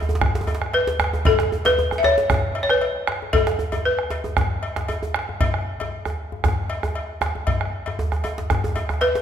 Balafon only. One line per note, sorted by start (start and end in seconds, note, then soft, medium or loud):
0.00 0.44 A4 medium
0.74 1.27 B4 loud
1.27 1.67 A4 loud
1.66 1.99 B4 loud
1.98 2.04 E5 medium
2.04 2.59 C#5 loud
2.63 2.69 C#5 medium
2.70 3.36 B4 loud
3.33 3.81 A4 medium
3.85 4.59 B4 medium
9.01 9.22 B4 loud